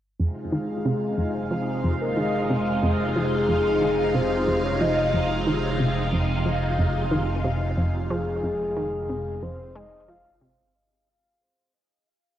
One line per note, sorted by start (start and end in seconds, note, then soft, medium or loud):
0.19 10.71 F1 medium
0.19 0.32 F2 medium
0.19 10.70 C3 medium
0.19 10.70 G#3 medium
0.19 10.70 D#4 medium
0.19 10.70 F4 medium
0.19 1.53 G#4 medium
0.19 10.76 F5 medium
0.52 0.65 D#3 medium
0.85 0.98 C3 medium
1.18 1.49 F2 medium
1.51 1.72 F3 medium
1.51 2.01 C5 medium
1.84 1.97 F2 medium
2.01 2.19 A#4 medium
2.17 2.29 D#3 medium
2.17 2.67 G#4 medium
2.50 2.62 C3 medium
2.83 3.14 F2 medium
2.83 4.17 G#4 loud
3.16 3.37 F3 medium
3.49 3.61 F2 medium
3.81 3.94 D#3 medium
4.15 4.27 C3 medium
4.15 4.66 C5 loud
4.47 4.79 F2 medium
4.64 4.83 C#5 medium
4.81 5.01 F3 medium
4.81 5.30 D#5 loud
5.14 5.26 F2 medium
5.47 5.59 D#3 medium
5.80 5.92 C3 medium
6.13 6.44 F2 medium
6.45 6.66 F3 medium
6.78 6.91 F2 medium
7.11 7.24 D#3 medium
7.44 7.57 C3 medium
7.78 8.08 F2 medium
8.10 8.31 F3 medium
8.10 9.44 G#4 medium
8.43 8.56 F2 medium
8.77 8.89 D#3 medium
9.09 9.22 C3 medium
9.43 9.73 F2 medium
9.43 9.77 C5 loud
9.75 9.96 G#3 loud
9.75 10.11 D#5 loud
10.08 10.29 F3 medium
10.08 10.58 F5 loud
10.41 10.62 C3 medium